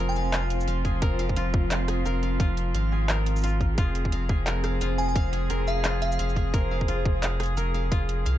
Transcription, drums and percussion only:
0.16 shaker
0.33 clap, closed hi-hat
0.50 closed hi-hat
0.61 shaker
0.68 closed hi-hat
0.85 kick, closed hi-hat
1.02 kick, closed hi-hat
1.19 closed hi-hat
1.29 kick
1.36 closed hi-hat
1.54 kick
1.71 clap, closed hi-hat
1.88 cross-stick, closed hi-hat
2.06 shaker
2.23 closed hi-hat
2.40 kick, closed hi-hat
2.57 closed hi-hat
2.75 closed hi-hat
3.09 clap, closed hi-hat
3.26 closed hi-hat
3.36 shaker
3.38 shaker
3.41 closed hi-hat, shaker
3.44 shaker
3.47 shaker
3.49 shaker
3.61 kick, closed hi-hat
3.78 kick, closed hi-hat
3.95 closed hi-hat
4.05 kick
4.12 closed hi-hat
4.29 kick
4.47 clap, closed hi-hat
4.64 cross-stick, closed hi-hat
4.81 closed hi-hat, shaker
4.98 closed hi-hat
5.16 kick, closed hi-hat
5.33 closed hi-hat
5.50 closed hi-hat
5.67 shaker
5.85 clap, closed hi-hat
6.02 closed hi-hat
6.12 shaker
6.19 closed hi-hat
6.29 shaker
6.36 kick, closed hi-hat
6.54 kick, closed hi-hat
6.81 kick
6.88 closed hi-hat
7.06 kick
7.23 clap, closed hi-hat
7.40 cross-stick, closed hi-hat
7.43 closed hi-hat
7.46 closed hi-hat
7.57 closed hi-hat, shaker
7.74 closed hi-hat
7.92 kick, closed hi-hat
8.09 closed hi-hat
8.26 closed hi-hat

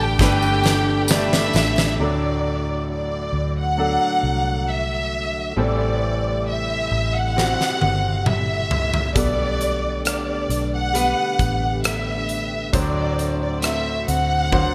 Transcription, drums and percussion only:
0.19 kick, snare, tambourine
0.42 tambourine
0.64 snare, tambourine
1.08 snare, tambourine
1.33 snare
1.53 snare, tambourine
1.76 snare, tambourine
7.38 snare
7.61 snare
7.81 high tom
8.26 mid tom
8.71 floor tom
8.94 floor tom
9.16 kick, closed hi-hat
9.61 closed hi-hat
10.05 cross-stick, closed hi-hat
10.50 closed hi-hat
10.95 closed hi-hat
11.39 kick, closed hi-hat
11.84 cross-stick, closed hi-hat
12.29 closed hi-hat
12.73 kick, closed hi-hat
13.19 closed hi-hat
13.62 cross-stick, closed hi-hat
14.08 closed hi-hat
14.52 kick, high tom

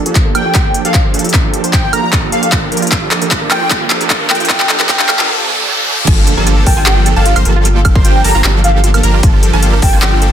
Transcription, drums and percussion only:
0.06 closed hi-hat
0.15 kick, clap, closed hi-hat
0.35 closed hi-hat, high woodblock
0.55 kick, clap, closed hi-hat
0.74 closed hi-hat
0.85 closed hi-hat
0.94 kick, clap, closed hi-hat
1.14 closed hi-hat
1.19 closed hi-hat
1.24 closed hi-hat
1.29 closed hi-hat
1.34 kick, clap, closed hi-hat
1.54 closed hi-hat
1.64 closed hi-hat
1.73 kick, clap, closed hi-hat
1.93 closed hi-hat, high woodblock
2.13 kick, clap, closed hi-hat
2.32 closed hi-hat
2.43 closed hi-hat
2.52 kick, clap, closed hi-hat
2.72 closed hi-hat
2.77 closed hi-hat
2.82 closed hi-hat
2.87 closed hi-hat
2.92 kick, clap, closed hi-hat
3.11 clap, closed hi-hat
3.22 closed hi-hat
3.31 kick, clap, closed hi-hat
3.51 clap, closed hi-hat, high woodblock
3.71 kick, clap, closed hi-hat
3.90 clap, closed hi-hat
4.01 closed hi-hat
4.10 kick, clap, closed hi-hat
4.30 clap, closed hi-hat
4.35 closed hi-hat
4.40 closed hi-hat
4.45 closed hi-hat
4.50 kick, clap, closed hi-hat
4.60 clap
4.69 clap, closed hi-hat
4.80 clap, closed hi-hat
4.89 kick, clap, closed hi-hat
4.99 clap
5.09 clap, closed hi-hat, high woodblock
5.19 clap
6.07 kick, closed hi-hat, crash
6.27 closed hi-hat
6.47 closed hi-hat
6.66 kick, open hi-hat
6.86 clap, closed hi-hat
7.06 closed hi-hat
7.26 closed hi-hat
7.36 closed hi-hat, high woodblock
7.45 closed hi-hat
7.65 closed hi-hat
7.85 kick, closed hi-hat, high woodblock
7.95 kick
8.05 closed hi-hat
8.24 open hi-hat
8.44 clap, closed hi-hat
8.64 closed hi-hat
8.84 closed hi-hat
8.94 closed hi-hat, high woodblock
9.03 closed hi-hat
9.23 kick, closed hi-hat
9.43 closed hi-hat
9.63 closed hi-hat
9.82 kick, open hi-hat
10.02 clap, closed hi-hat
10.22 closed hi-hat

